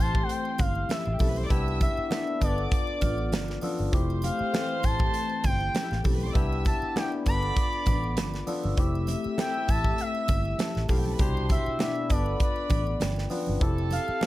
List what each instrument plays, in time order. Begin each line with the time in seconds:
Already playing: tine electric piano E3 A3 C4 E4 G4, violin section C5 C6
0.00 fingered electric bass A1, analog synth lead A5
0.15 kick, muted triangle
0.23 analog synth lead F#5
0.29 analog synth lead G5, closed hi-hat, muted triangle
0.45 muted triangle
0.58 fingered electric bass G1, analog synth lead F5, kick, closed hi-hat, muted conga, low conga, triangle
0.75 muted triangle
0.89 analog synth lead E5, snare, closed hi-hat, high conga, muted triangle
0.98 violin section E4 E5
1.05 fingered electric bass A1, violin section F4 F5, muted triangle
1.13 violin section G4 G5
1.19 fingered electric bass B1, tine electric piano A3 C4 E4 G4, violin section A4 A5, kick, open hi-hat, high conga, triangle
1.28 violin section B4 B5
1.36 violin section C5 C6, high conga, muted triangle
1.43 violin section D5 D6
1.49 fingered electric bass C2, tine electric piano B3 D4 E4 G4, violin section E5 E6, kick, closed hi-hat, muted triangle
1.68 muted triangle
1.81 analog synth lead E5, kick, closed hi-hat, muted conga, triangle
1.97 muted fingered electric bass stroke, muted triangle
2.10 tine electric piano B3 D4 E4 A4, analog synth lead E5, snare, closed hi-hat, high conga, muted triangle
2.27 muted triangle
2.40 fingered electric bass G1, tine electric piano B3 D4 F4 A4, violin section D5 D6, analog synth lead D5, kick, closed hi-hat, triangle
2.58 muted triangle
2.71 analog synth lead D5, kick, closed hi-hat, muted triangle
2.87 muted triangle
3.01 fingered electric bass A1, vibraphone F4, kick, closed hi-hat, muted conga, low conga, triangle
3.18 muted triangle
3.32 fingered electric bass G1, snare, closed hi-hat, high conga, muted triangle
3.48 snare, muted triangle
3.61 tine electric piano B3 D4 F4 A4, open hi-hat, high conga, triangle
3.79 fingered electric bass G1, high conga, muted triangle
3.92 fingered electric bass F1, tine electric piano A3 C4 E4 G4, violin section C5 C6, kick, closed hi-hat, muted conga, muted triangle
4.10 muted triangle
4.22 analog synth lead F5, vibraphone G5, closed hi-hat, muted conga, triangle
4.39 muted fingered electric bass stroke, muted triangle
4.53 tine electric piano E3 A3 C4 G4, snare, closed hi-hat, high conga, muted triangle
4.69 muted triangle
4.83 fingered electric bass A1, analog synth lead A5, kick, closed hi-hat, triangle
4.99 kick, muted triangle
5.14 closed hi-hat, muted triangle
5.30 muted triangle
5.44 fingered electric bass G1, analog synth lead G5, kick, closed hi-hat, muted conga, low conga, triangle
5.61 muted triangle
5.74 vibraphone G5, snare, closed hi-hat, high conga, muted triangle
5.83 violin section E4 E5
5.91 fingered electric bass A1, violin section F4 F5, snare, muted triangle
5.97 violin section G4 G5
6.04 fingered electric bass B1, tine electric piano A3 C4 E4 G4, violin section A4 A5, kick, open hi-hat, high conga, triangle
6.13 violin section B4 B5
6.21 violin section C5 C6, high conga, muted triangle
6.28 violin section D5 D6
6.34 fingered electric bass C2, tine electric piano B3 D4 E4 G4, violin section E5 E6, kick, closed hi-hat, muted triangle
6.52 muted triangle
6.65 analog synth lead A5, kick, closed hi-hat, muted conga, triangle
6.82 muted fingered electric bass stroke, muted triangle
6.96 tine electric piano B3 D4 E4 G4, analog synth lead G5, snare, closed hi-hat, high conga, muted triangle
7.12 muted triangle
7.26 fingered electric bass G1, tine electric piano B3 D4 F4 A4, violin section D5 D6, analog synth lead B5, kick, closed hi-hat, triangle
7.43 muted triangle
7.56 vibraphone D6, kick, closed hi-hat, muted triangle
7.73 muted triangle
7.86 fingered electric bass A1, kick, closed hi-hat, muted conga, low conga, triangle
8.04 muted triangle
8.17 fingered electric bass G1, snare, closed hi-hat, high conga, muted triangle
8.34 snare, muted triangle
8.47 tine electric piano B3 D4 F4 A4, vibraphone E6, open hi-hat, high conga, triangle
8.63 fingered electric bass G1, high conga, muted triangle
8.77 fingered electric bass F1, tine electric piano A3 C4 E4 G4, violin section E5 E6, kick, closed hi-hat, muted conga, muted triangle
8.95 muted triangle
9.07 closed hi-hat, muted conga, triangle
9.24 muted fingered electric bass stroke, muted triangle
9.37 tine electric piano A3 C4 E4 G4, analog synth lead G5, snare, closed hi-hat, high conga, muted triangle
9.54 muted triangle
9.68 fingered electric bass A1, analog synth lead A5, kick, closed hi-hat, triangle
9.84 kick, muted triangle
9.98 analog synth lead E5, closed hi-hat, muted triangle
10.15 muted triangle
10.28 fingered electric bass G1, kick, closed hi-hat, muted conga, low conga, triangle
10.45 muted triangle
10.59 vibraphone A5, snare, closed hi-hat, high conga, muted triangle
10.75 fingered electric bass A1, snare, muted triangle
10.88 fingered electric bass B1, tine electric piano A3 C4 E4 G4, violin section F4 F5, kick, open hi-hat, high conga, triangle
10.98 violin section G4 G5
11.05 violin section A4 A5, high conga, muted triangle
11.12 violin section B4 B5
11.19 fingered electric bass C2, tine electric piano B2 D4 E4 G4, violin section C5 C6, kick, closed hi-hat, muted triangle
11.37 muted triangle
11.49 analog synth lead E5, kick, closed hi-hat, muted conga, triangle
11.66 muted fingered electric bass stroke, muted triangle
11.79 tine electric piano B3 D4 E4 G4, analog synth lead E5, snare, closed hi-hat, high conga, muted triangle
11.95 muted triangle
12.09 fingered electric bass G1, tine electric piano B3 D4 F4 A4, violin section B4 B5, analog synth lead D5, kick, closed hi-hat, triangle
12.26 muted triangle
12.40 analog synth lead D5, kick, closed hi-hat, muted triangle
12.56 muted triangle
12.70 fingered electric bass A1, kick, closed hi-hat, muted conga, low conga, triangle
12.87 muted triangle
13.00 fingered electric bass G1, vibraphone G5, snare, closed hi-hat, high conga, muted triangle
13.16 snare, muted triangle
13.30 tine electric piano B3 D4 F4 B4, open hi-hat, high conga, triangle
13.47 fingered electric bass G1, high conga, muted triangle
13.61 fingered electric bass F1, tine electric piano C4 E4 G4 A4, violin section A4 A5, kick, closed hi-hat, muted triangle
13.78 muted triangle
13.91 analog synth lead F5, closed hi-hat, muted conga, triangle
14.08 muted fingered electric bass stroke, muted triangle
14.21 tine electric piano E3 C4 G4 A4, snare, closed hi-hat, high conga, muted triangle